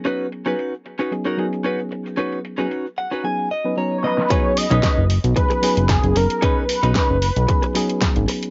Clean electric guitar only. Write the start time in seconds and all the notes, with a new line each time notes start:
0.05 C#4 D#4 F#4 B4
0.46 C#4 D#4 F#4 B4
0.99 C#4 D#4 F#4 B4
1.25 C#4 D#4 F#4 A#4
1.64 C#4 D#4 F#4 B4
1.91 muted clean electric guitar stroke
2.17 C#4 D#4 F#4 B4
2.58 C#4 D#4 F#4 B4
2.98 F#5
3.11 C#4 D#4 F#4 B4
3.25 G#5
3.51 D#5
3.78 C#5
4.04 D#5
4.30 C#4 D#4 G#4 B4
4.70 C#4 D#4 G#4 B4
5.36 muted clean electric guitar stroke
5.50 muted clean electric guitar stroke
5.63 muted clean electric guitar stroke
6.16 muted clean electric guitar stroke
6.42 C#4 D#4 G#4 B4
6.83 C#4 D#4 G#4 B4
7.48 muted clean electric guitar stroke
7.62 muted clean electric guitar stroke
7.75 muted clean electric guitar stroke
8.28 muted clean electric guitar stroke